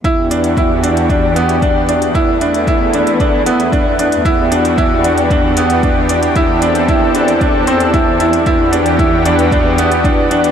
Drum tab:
HH |x-xxx-xxx-xxx-xx|x-xxx-xxx-xxx-xx|x-xxx-xxx-xxx-xx|x-xxx-xxx-xxx-xx|
BD |o---o---o---o---|o---o---o---o---|o---o---o---o---|o---o---o---o---|

HH |x-xxx-xxx-xxx-xx|
BD |o---o---o---o---|